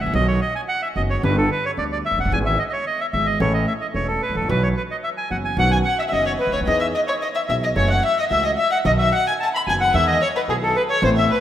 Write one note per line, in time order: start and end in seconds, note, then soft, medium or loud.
0.01 0.08 A1 medium
0.01 0.13 E5 medium
0.06 0.13 A#1 medium
0.06 0.15 A#1 medium
0.14 0.37 B1 loud
0.14 0.38 B1 medium
0.14 0.38 B2 medium
0.14 0.37 D#3 medium
0.14 0.37 F#3 medium
0.14 0.38 B3 medium
0.14 0.38 F#4 medium
0.14 0.27 D#5 loud
0.28 0.40 C#5 medium
0.41 0.54 D#5 medium
0.55 0.61 G#5 medium
0.68 0.81 F#5 medium
0.82 0.88 E5 medium
0.96 1.19 F#1 medium
0.96 1.19 F#2 medium
0.96 1.19 D#3 soft
0.96 1.19 F#3 soft
0.96 1.19 B3 soft
0.96 1.19 F#4 soft
0.96 1.02 D#5 medium
1.10 1.22 C#5 medium
1.23 1.46 G1 medium
1.23 1.46 G2 medium
1.23 1.46 D3 medium
1.23 1.46 G3 medium
1.23 1.46 B3 medium
1.23 1.46 G4 medium
1.23 1.36 B4 medium
1.37 1.50 A4 medium
1.52 1.65 B4 medium
1.66 1.71 C#5 medium
1.77 2.00 D2 medium
1.77 2.00 D3 medium
1.77 2.00 G3 soft
1.77 2.00 B3 soft
1.77 2.00 G4 soft
1.77 1.84 D5 medium
1.92 1.98 D5 medium
2.06 2.19 E5 medium
2.11 2.18 F1 medium
2.11 2.18 F1 soft
2.18 2.25 F#1 medium
2.18 2.32 F#5 medium
2.25 2.32 G1 medium
2.32 2.55 G#1 loud
2.32 2.55 G#1 medium
2.32 2.55 G#2 medium
2.32 2.55 E3 medium
2.32 2.55 G#3 medium
2.32 2.55 B3 medium
2.32 2.55 G#4 medium
2.32 2.39 G#5 loud
2.46 2.58 E5 medium
2.59 2.63 D#5 medium
2.69 2.85 C#5 medium
2.69 2.72 D#5 medium
2.87 3.00 D#5 medium
3.00 3.06 E5 medium
3.13 3.36 G#1 medium
3.13 3.36 G#2 medium
3.13 3.36 E3 soft
3.13 3.36 G#3 soft
3.13 3.36 B3 soft
3.13 3.36 G#4 medium
3.13 3.27 E5 medium
3.26 3.39 D#5 medium
3.40 3.63 A1 loud
3.40 3.63 A1 medium
3.40 3.63 A2 medium
3.40 3.63 E3 medium
3.40 3.63 A3 medium
3.40 3.63 C#4 medium
3.40 3.63 A4 medium
3.40 3.53 C#5 medium
3.53 3.66 D#5 medium
3.67 3.73 E5 medium
3.81 3.87 D#5 medium
3.94 4.17 E1 medium
3.94 4.17 E2 medium
3.94 4.17 E3 soft
3.94 4.17 A3 soft
3.94 4.17 C#4 soft
3.94 4.17 A4 soft
3.94 4.07 C#5 medium
4.08 4.22 A4 medium
4.22 4.36 B4 medium
4.29 4.35 G#1 soft
4.29 4.34 G#1 soft
4.35 4.41 A1 medium
4.35 4.42 A1 medium
4.35 4.48 A4 medium
4.42 4.49 A#1 medium
4.48 4.71 B1 medium
4.48 4.72 B1 loud
4.48 4.71 B2 medium
4.48 4.71 E3 medium
4.48 4.71 F#3 medium
4.48 4.71 B3 medium
4.48 4.71 F#4 medium
4.48 4.63 B4 medium
4.63 4.69 C#5 medium
4.76 4.82 B4 medium
4.91 4.97 D#5 medium
5.04 5.10 E5 medium
5.18 5.30 G#5 medium
5.30 5.53 F#1 medium
5.30 5.53 F#2 medium
5.30 5.53 E3 soft
5.30 5.53 F#3 soft
5.30 5.53 B3 soft
5.30 5.53 F#4 medium
5.30 5.37 F#5 medium
5.45 5.57 G#5 medium
5.57 5.80 B1 medium
5.57 5.81 B1 medium
5.57 5.81 B2 medium
5.57 5.81 D#3 medium
5.57 5.81 B3 medium
5.57 5.81 C#4 medium
5.57 5.81 F#4 medium
5.57 5.72 F#5 medium
5.57 5.71 F#5 medium
5.71 5.77 G#5 medium
5.71 5.78 G#5 medium
5.85 5.97 F#5 medium
5.85 5.98 F#5 medium
5.99 6.03 E5 medium
6.08 6.35 F#1 soft
6.08 6.35 F#2 soft
6.08 6.35 D#3 soft
6.08 6.35 B3 soft
6.08 6.35 C#4 soft
6.08 6.35 F#4 soft
6.08 6.25 D#5 medium
6.08 6.12 E5 medium
6.13 6.35 F#1 medium
6.26 6.32 C#5 medium
6.26 6.33 C#5 medium
6.40 6.52 B4 medium
6.40 6.53 B4 medium
6.46 6.53 C#2 soft
6.53 6.60 D2 medium
6.53 6.59 C#5 medium
6.53 6.60 C#5 medium
6.61 6.67 D#2 medium
6.66 6.90 E2 medium
6.66 6.90 E3 medium
6.66 6.90 B3 medium
6.66 6.90 D#4 medium
6.66 6.90 G#4 medium
6.66 6.79 D#5 medium
6.66 6.81 D#5 loud
6.80 6.86 E5 medium
6.80 6.87 E5 medium
6.94 7.00 D#5 medium
6.94 7.01 D#5 medium
7.06 7.13 C#5 medium
7.06 7.14 C#5 medium
7.21 7.28 D#5 medium
7.34 7.41 E5 medium
7.48 7.72 B1 medium
7.48 7.72 B2 medium
7.48 7.72 E3 soft
7.48 7.72 B3 soft
7.48 7.72 D#4 soft
7.48 7.72 G#4 medium
7.48 7.54 E5 medium
7.48 7.56 E5 medium
7.63 7.69 D#5 medium
7.63 7.70 D#5 medium
7.75 7.99 F#1 medium
7.75 7.99 F#2 medium
7.75 7.99 E3 medium
7.75 7.99 F#3 medium
7.75 7.99 A3 medium
7.75 7.99 C#4 medium
7.75 7.99 F#4 medium
7.75 7.90 C#5 medium
7.75 7.89 C#5 medium
7.90 8.03 F#5 medium
8.05 8.18 E5 medium
8.05 8.17 E5 medium
8.19 8.24 D#5 medium
8.19 8.25 D#5 medium
8.30 8.53 C#2 medium
8.30 8.54 C#2 medium
8.30 8.54 C#3 medium
8.30 8.53 E3 soft
8.30 8.53 A3 soft
8.30 8.54 C#4 soft
8.30 8.54 F#4 soft
8.30 8.43 E5 medium
8.30 8.44 E5 medium
8.44 8.51 D#5 medium
8.58 8.71 E5 medium
8.71 8.78 F#5 medium
8.84 9.08 B1 medium
8.84 9.08 B1 loud
8.84 9.08 B2 medium
8.84 9.08 D#3 medium
8.84 9.08 F#3 medium
8.84 9.08 B3 medium
8.84 9.08 F#4 medium
8.84 8.92 D#5 loud
8.84 8.92 D#5 medium
8.98 9.13 E5 medium
9.12 9.25 F#5 loud
9.12 9.26 F#5 medium
9.27 9.33 G#5 medium
9.27 9.34 G#5 medium
9.40 9.46 A5 loud
9.40 9.49 A5 medium
9.54 9.60 B5 loud
9.54 9.62 B5 medium
9.67 9.90 F#1 medium
9.67 9.90 F#2 medium
9.67 9.90 D#3 soft
9.67 9.90 F#3 soft
9.67 9.90 B3 soft
9.67 9.90 F#4 medium
9.67 9.73 G#5 medium
9.67 9.75 G#5 medium
9.80 9.95 F#5 medium
9.80 9.94 F#5 medium
9.94 10.17 E2 loud
9.94 10.18 E2 medium
9.94 10.17 D#3 medium
9.94 10.17 E3 medium
9.94 10.17 G#3 medium
9.94 10.17 B3 medium
9.94 10.17 E4 medium
9.94 10.07 E5 loud
9.94 10.07 E5 medium
10.07 10.21 D#5 medium
10.22 10.28 C#5 medium
10.36 10.42 B4 medium
10.48 10.71 B1 medium
10.48 10.71 B2 medium
10.48 10.71 D#3 soft
10.48 10.71 G#3 soft
10.48 10.71 B3 soft
10.48 10.71 E4 medium
10.48 10.55 G#4 medium
10.48 10.56 G#4 medium
10.63 10.76 A4 medium
10.76 10.82 B4 medium
10.76 10.83 B4 medium
10.90 11.03 C#5 medium
10.90 11.02 C#5 medium
11.02 11.25 A1 medium
11.02 11.26 A2 medium
11.02 11.25 C3 medium
11.02 11.25 A3 medium
11.02 11.26 B3 medium
11.02 11.26 E4 medium
11.02 11.09 C5 loud
11.02 11.10 C5 medium
11.17 11.29 E5 medium
11.17 11.31 E5 medium
11.31 11.40 B4 medium